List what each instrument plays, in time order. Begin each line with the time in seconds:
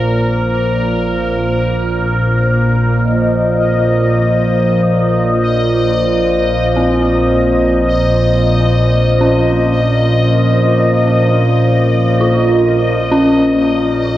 Already playing: synth drone A#1 A#2, analog synth pad A#3 F4 C5, synth texture A#4
3.00 synth texture D#5
6.76 synth bell C4
9.21 synth bell C#4
12.21 synth bell F4
13.12 synth bell C#4